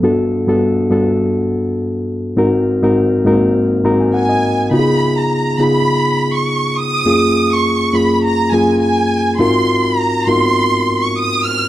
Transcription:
0.03 G2 B3 D4 F#4 A4
0.48 G2 B3 D4 F#4 A4
0.90 G2 B3 D4 F#4 A4
2.37 G#2 C4 D#4 F#4 A#4
2.82 G#2 C4 D#4 F#4 A#4
3.25 G#2 A#3 D#4 F#4 A#4
3.32 C4
3.84 G#2 C4 D#4 F#4 A#4 A#5
4.00 G#5
4.14 F#5 G#5
4.29 D#5
4.71 C#3 B3 D#4 F4 F#4 B5
4.79 G#4
5.19 A#5
5.58 C#3 B3 D#4 F4 G#4 B5
6.35 C#6
6.78 D#6
7.05 F#2 A#3 C#4 F4 G#4
7.53 C#6
7.92 F#2 A#3 C#4 F4 G#4 B5
8.24 A#5
8.52 F#2 A#3 C#4 F4 G#4 G#5
8.82 G#5
9.39 G#2 C4 D#4 F4 F#4 A#4 C6
9.84 A#5
10.27 G#2 B3 D#4 F4 F#4 A#4 C6
10.34 C4
11.03 C#6
11.17 D#6
11.45 F6

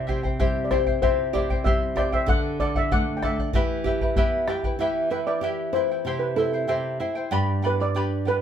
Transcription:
Already playing: C3 D5
0.07 E4 G4 C5 E5 G5, bombo low
0.23 E4 C5 G5, bombo low
0.40 G3 E4 G4 C5 E5 G5, bombo low
0.65 D5
0.71 E4 G4 C5 E5 G5, bombo rim, bombo low
0.86 E4 C5 G5, bombo low
1.02 C3 E4 G4 C5 E5 G5, bombo low
1.33 E4 G4 C5 D5 E5 G5, bombo low
1.50 E4 C5 G5, bombo low
1.64 G3 E4 G4 C5 E5 G5, bombo low
1.96 E4 G4 C5 D5 E5 G5, bombo rim, bombo low
2.12 E4 C5 E5 G5, bombo low
2.26 D3 A4 D5 F#5, bombo low
2.59 A4 D5 F#5, bombo low
2.75 D5 E5 F#5, bombo low
2.91 A3 A4 D5 F#5, bombo low
3.17 G5
3.23 A4 D5 E5 F#5, bombo rim, bombo low
3.38 D5 F#5, bombo low
3.53 E3 E4 G4 B4 E5 G5, bombo low
3.84 E4 G4 B4 E5 G5, bombo low
4.01 E4 B4 G5, bombo low
4.16 B3 E4 G4 B4 E5 G5, bombo low
4.48 E4 G4 B4 E5 G5, bombo rim
4.63 E4 B4 G5, bombo low
4.79 E3 E4 G4 B4 E5 G5
5.10 E4 B4 E5 G5
5.27 E4 B4 D5 G5
5.41 E4 G4 B4 E5 G5
5.73 E4 B4 C5 E5 G5
5.91 E4 B4 G5
6.05 C3 E4 G4 C5 E5 G5
6.19 B4
6.36 E4 A4 C5 E5 G5
6.53 E4 C5 G5
6.68 C3 E4 G4 C5 E5 G5
7.00 E4 C5 E5 G5
7.15 E4 C5 G5
7.31 G2 G4 B4 D5 G5 B5
7.62 G3 B4 D5 G5 B5
7.67 B4
7.80 B4 D5 B5
7.95 D4 G4 B4 D5 G5 B5
8.25 G3 B4 D5 G5 B5

